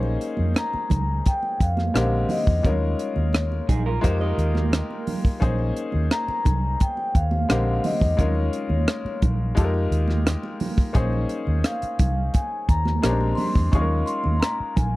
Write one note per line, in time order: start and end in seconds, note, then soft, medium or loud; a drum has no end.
0.00 0.16 A#1 medium
0.00 1.90 A#3 medium
0.00 1.91 C#4 medium
0.00 1.91 D#4 medium
0.00 1.91 G#4 medium
0.00 1.92 C5 medium
0.00 muted conga soft
0.21 closed hi-hat medium
0.37 0.53 F2 medium
0.37 high conga medium
0.55 1.29 A#5 loud
0.55 cross-stick medium
0.55 closed hi-hat medium
0.55 muted conga soft
0.74 muted fingered electric bass stroke soft
0.74 muted conga soft
0.90 1.20 C#2 medium
0.90 kick medium
0.90 closed hi-hat medium
0.90 low conga medium
1.26 1.62 G5 medium
1.26 kick medium
1.26 closed hi-hat medium
1.43 muted conga soft
1.60 1.89 F2 medium
1.60 2.33 F5 medium
1.60 kick medium
1.60 closed hi-hat medium
1.77 cross-stick soft
1.77 high conga medium
1.94 2.24 A#1 medium
1.94 2.64 D3 medium
1.94 2.64 G#3 medium
1.94 2.64 C4 medium
1.94 2.64 G4 medium
1.94 2.64 A#4 medium
1.94 cross-stick loud
1.94 closed hi-hat medium
2.29 2.66 D#5 medium
2.29 open hi-hat medium
2.29 high conga medium
2.29 low conga medium
2.47 2.62 E2 medium
2.47 kick medium
2.63 2.93 D#2 loud
2.63 2.70 G3 soft
2.63 4.00 C#4 medium
2.63 4.00 D#4 medium
2.63 4.01 F4 medium
2.63 4.01 A#4 medium
2.63 3.65 C#5 medium
2.63 kick medium
2.63 closed hi-hat medium
2.63 muted conga soft
2.63 low conga medium
2.69 4.00 G#3 medium
2.99 closed hi-hat medium
3.16 3.59 D#2 medium
3.16 high conga soft
3.33 cross-stick loud
3.33 closed hi-hat medium
3.33 muted conga soft
3.52 muted conga soft
3.69 3.97 A#1 medium
3.69 3.85 D#4 soft
3.69 3.85 G#4 medium
3.69 kick medium
3.69 closed hi-hat medium
3.69 low conga medium
3.86 4.03 F4 medium
3.86 4.02 A#4 medium
4.01 4.33 F2 medium
4.01 5.38 G#3 medium
4.01 5.38 D#4 medium
4.01 5.39 F4 medium
4.01 5.39 G4 medium
4.01 4.20 G4 soft
4.01 5.40 A#4 medium
4.01 4.20 C5 medium
4.01 kick medium
4.01 closed hi-hat medium
4.01 muted conga soft
4.21 5.21 A#4 soft
4.21 5.21 D#5 medium
4.21 muted conga soft
4.38 4.81 D#2 medium
4.38 closed hi-hat medium
4.55 cross-stick soft
4.55 high conga medium
4.72 cross-stick loud
4.72 closed hi-hat medium
4.72 muted conga soft
4.90 muted conga soft
5.07 open hi-hat medium
5.07 high conga medium
5.07 low conga medium
5.25 kick medium
5.40 5.71 A#1 loud
5.40 7.45 A#3 medium
5.40 7.45 C#4 medium
5.40 7.46 D#4 medium
5.40 7.46 G#4 medium
5.40 7.46 C5 medium
5.40 kick medium
5.40 closed hi-hat medium
5.40 muted conga soft
5.40 low conga medium
5.59 muted conga soft
5.77 closed hi-hat medium
5.92 6.08 D#2 medium
5.92 high conga soft
6.11 6.83 A#5 loud
6.11 cross-stick medium
6.11 closed hi-hat medium
6.28 muted fingered electric bass stroke soft
6.28 muted conga soft
6.45 6.75 C2 medium
6.45 kick medium
6.45 closed hi-hat medium
6.45 low conga medium
6.80 7.17 G5 medium
6.80 kick medium
6.80 closed hi-hat medium
6.80 muted conga soft
6.97 muted conga soft
7.15 7.44 D#2 medium
7.15 7.87 F5 medium
7.15 kick medium
7.15 closed hi-hat medium
7.31 high conga medium
7.49 7.78 A#1 medium
7.49 8.19 D3 medium
7.49 8.15 G#3 medium
7.49 8.19 C4 medium
7.49 8.19 G4 medium
7.49 8.18 A#4 medium
7.49 cross-stick loud
7.49 closed hi-hat medium
7.49 muted conga soft
7.84 8.21 D#5 medium
7.84 open hi-hat medium
7.84 high conga medium
7.84 low conga medium
8.01 8.16 E2 medium
8.01 kick medium
8.17 8.48 D#2 loud
8.17 9.53 G#3 medium
8.17 9.54 C#4 medium
8.17 9.54 D#4 medium
8.17 9.55 F4 medium
8.17 9.55 A#4 medium
8.17 9.20 C#5 medium
8.17 kick medium
8.17 closed hi-hat medium
8.17 muted conga soft
8.17 low conga medium
8.35 muted conga soft
8.53 closed hi-hat medium
8.69 8.85 D#2 medium
8.69 high conga soft
8.88 cross-stick loud
8.88 closed hi-hat medium
9.05 muted fingered electric bass stroke soft
9.05 muted conga soft
9.22 9.51 A#1 medium
9.22 kick medium
9.22 closed hi-hat medium
9.22 low conga medium
9.55 9.87 F2 medium
9.55 10.92 G#3 medium
9.55 10.92 D#4 medium
9.55 10.93 F4 medium
9.55 10.93 G4 medium
9.55 9.64 A4 medium
9.55 kick medium
9.55 closed hi-hat medium
9.55 muted conga soft
9.64 10.97 A#4 medium
9.74 muted conga soft
9.91 10.35 D#2 medium
9.91 closed hi-hat medium
10.08 cross-stick soft
10.08 high conga medium
10.26 cross-stick loud
10.26 closed hi-hat medium
10.26 muted conga soft
10.43 muted conga soft
10.60 open hi-hat medium
10.60 high conga medium
10.60 low conga medium
10.78 kick medium
10.93 11.24 A#1 medium
10.93 12.98 A#3 medium
10.93 12.99 C#4 medium
10.93 12.99 D#4 medium
10.93 12.99 G#4 medium
10.93 13.00 C5 medium
10.93 kick medium
10.93 closed hi-hat medium
10.93 muted conga soft
10.93 low conga medium
11.13 muted conga soft
11.29 closed hi-hat medium
11.47 11.62 D#2 medium
11.47 high conga soft
11.64 12.37 F5 medium
11.64 cross-stick loud
11.64 closed hi-hat medium
11.64 muted conga soft
11.82 muted fingered electric bass stroke soft
11.82 closed hi-hat soft
11.99 12.28 C2 medium
11.99 kick medium
11.99 closed hi-hat medium
11.99 low conga medium
12.34 12.70 G#5 medium
12.34 kick medium
12.34 closed hi-hat medium
12.34 muted conga soft
12.69 12.98 D#2 medium
12.69 13.40 A#5 medium
12.69 kick medium
12.69 closed hi-hat medium
12.85 cross-stick soft
12.85 high conga medium
13.02 13.33 A#1 medium
13.02 13.70 G#3 medium
13.02 13.72 C4 medium
13.02 13.10 C#4 soft
13.02 13.73 G4 medium
13.02 13.73 A#4 medium
13.02 cross-stick loud
13.02 closed hi-hat medium
13.10 13.76 D4 medium
13.21 muted conga soft
13.35 13.69 C6 medium
13.35 open hi-hat medium
13.35 high conga medium
13.35 low conga medium
13.55 13.70 E2 medium
13.55 kick medium
13.72 14.02 D#2 loud
13.72 14.96 G#3 medium
13.72 14.96 C#4 medium
13.72 14.96 D#4 medium
13.72 14.96 F4 medium
13.72 13.80 G#4 medium
13.72 14.08 C#6 medium
13.72 kick medium
13.72 closed hi-hat medium
13.72 muted conga soft
13.72 low conga medium
13.81 14.96 A#4 medium
14.06 14.35 C6 medium
14.06 closed hi-hat medium
14.24 14.40 D#2 medium
14.24 high conga soft
14.37 14.73 A#5 medium
14.37 14.43 C6 medium
14.42 cross-stick medium
14.42 closed hi-hat medium
14.60 muted fingered electric bass stroke soft
14.76 14.96 A#1 medium
14.76 14.96 G#5 medium
14.76 kick medium
14.76 closed hi-hat medium
14.76 low conga medium